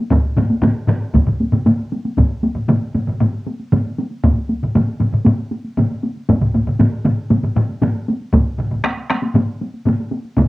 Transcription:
0.10 taiko medium
0.10 taiko low-mid loud
0.10 taiko mid loud
0.10 taiko high medium
0.36 taiko low-mid loud
0.36 taiko mid loud
0.36 taiko high medium
0.50 taiko high medium
0.62 taiko low-mid loud
0.62 taiko mid loud
0.62 taiko high medium
0.87 taiko low-mid loud
0.87 taiko mid loud
0.87 taiko high soft
1.14 taiko medium
1.14 taiko low-mid medium
1.14 taiko mid medium
1.14 taiko high medium
1.27 taiko low-mid medium
1.27 taiko mid medium
1.41 taiko high soft
1.52 taiko low-mid medium
1.52 taiko mid medium
1.52 taiko high medium
1.66 taiko low-mid medium
1.66 taiko mid medium
1.66 taiko high medium
1.92 taiko high medium
2.05 taiko high soft
2.17 taiko medium
2.17 taiko low-mid medium
2.17 taiko mid medium
2.17 taiko high medium
2.30 taiko high soft
2.44 taiko high medium
2.55 taiko low-mid medium
2.55 taiko mid medium
2.55 taiko high soft
2.68 taiko low-mid medium
2.68 taiko mid loud
2.68 taiko high medium
2.82 taiko high soft
2.95 taiko low-mid medium
2.95 taiko mid medium
2.95 taiko high soft
3.08 taiko low-mid medium
3.08 taiko mid medium
3.21 taiko low-mid medium
3.21 taiko mid medium
3.21 taiko high medium
3.33 taiko high soft
3.46 taiko high medium
3.59 taiko high soft
3.72 taiko low-mid medium
3.72 taiko mid medium
3.72 taiko high medium
3.86 taiko high soft
3.98 taiko high medium
4.11 taiko high soft
4.24 taiko medium
4.24 taiko low-mid medium
4.24 taiko mid medium
4.24 taiko high medium
4.37 taiko high soft
4.49 taiko high soft
4.62 taiko low-mid medium
4.62 taiko mid medium
4.62 taiko high soft
4.75 taiko low-mid loud
4.75 taiko mid medium
4.75 taiko high medium
4.87 taiko high soft
5.00 taiko low-mid medium
5.00 taiko mid medium
5.00 taiko high soft
5.14 taiko low-mid medium
5.14 taiko mid medium
5.25 taiko low-mid loud
5.25 taiko mid medium
5.25 taiko high medium
5.38 taiko high soft
5.51 taiko high medium
5.65 taiko high soft
5.78 taiko low-mid medium
5.78 taiko mid medium
5.78 taiko high medium
5.91 taiko high soft
6.03 taiko high medium
6.17 taiko high soft
6.29 taiko medium
6.29 taiko low-mid medium
6.29 taiko mid medium
6.29 taiko high medium
6.42 taiko low-mid medium
6.42 taiko mid medium
6.42 taiko high soft
6.55 taiko low-mid medium
6.55 taiko mid medium
6.55 taiko high medium
6.67 taiko low-mid medium
6.67 taiko mid medium
6.67 taiko high soft
6.79 taiko low-mid loud
6.79 taiko mid loud
6.79 taiko high medium
6.92 taiko high soft
7.05 taiko low-mid loud
7.05 taiko mid medium
7.05 taiko high medium
7.30 taiko low-mid medium
7.30 taiko mid medium
7.30 taiko high medium
7.43 taiko low-mid medium
7.43 taiko mid medium
7.43 taiko high soft
7.56 taiko low-mid loud
7.56 taiko mid medium
7.56 taiko high soft
7.69 taiko high soft
7.82 taiko low-mid medium
7.82 taiko mid loud
7.82 taiko high medium
7.95 taiko high soft
8.08 taiko high medium
8.21 taiko high soft
8.33 taiko loud
8.33 taiko low-mid medium
8.33 taiko mid medium
8.33 taiko high medium
8.58 taiko low-mid medium
8.58 taiko mid medium
8.71 taiko low-mid medium
8.71 taiko mid medium
8.71 taiko high soft
8.84 taiko rim medium
8.84 taiko high medium
8.97 taiko high soft
9.10 taiko rim medium
9.10 taiko high medium
9.22 taiko high soft
9.34 taiko low-mid medium
9.34 taiko mid medium
9.34 taiko high medium
9.61 taiko high soft
9.74 taiko high soft
9.85 taiko low-mid medium
9.85 taiko mid medium
9.85 taiko high medium
10.00 taiko high soft
10.11 taiko high medium
10.25 taiko high soft
10.37 taiko loud
10.37 taiko low-mid medium
10.37 taiko mid medium
10.37 taiko high medium

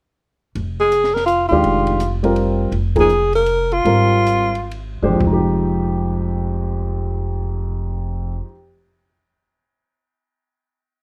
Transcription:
0.55 1.47 F1 medium
0.55 ride soft
0.80 1.16 G#4 medium
0.92 hi-hat pedal medium
0.92 ride medium
1.04 snare soft
1.14 1.26 A#4 medium
1.14 snare soft
1.26 1.48 F4 medium
1.26 hi-hat pedal soft
1.26 ride soft
1.49 1.63 D#2 medium
1.49 1.97 D#3 medium
1.49 1.98 G#3 medium
1.49 1.98 D4 soft
1.49 2.18 F4 medium
1.53 1.98 G4 medium
1.64 2.68 F1 medium
1.64 ride soft
1.87 ride soft
2.00 hi-hat pedal medium
2.00 ride medium
2.23 2.70 G3 medium
2.23 2.70 C4 medium
2.23 2.70 F4 medium
2.23 2.70 A#4 medium
2.23 ride soft
2.36 ride soft
2.72 3.81 F1 medium
2.72 ride soft
2.95 3.07 F3 medium
2.95 3.07 A#3 medium
2.95 3.08 D#4 soft
2.95 3.08 G#4 medium
2.95 kick medium
2.95 ride medium
3.00 3.32 G#4 medium
3.09 hi-hat pedal medium
3.33 3.75 A#4 medium
3.33 ride soft
3.46 hi-hat pedal soft
3.46 ride soft
3.72 4.73 F4 medium
3.72 ride soft
3.85 4.99 G#1 medium
3.85 4.49 G3 soft
3.85 4.50 C4 soft
3.85 4.50 F4 soft
3.85 4.50 A#4 medium
3.85 ride soft
4.27 hi-hat pedal medium
4.27 ride medium
4.55 ride soft
4.71 ride soft
5.02 5.20 G1 medium
5.02 5.19 G#3 medium
5.02 5.19 D4 medium
5.02 5.19 G4 medium
5.02 5.20 C5 medium
5.09 8.31 F2 medium
5.15 8.37 F3 soft
5.20 8.39 F1 medium
5.20 8.43 G#3 soft
5.20 kick medium
5.20 floor tom medium
5.27 8.49 D#4 soft
5.33 8.55 G4 medium

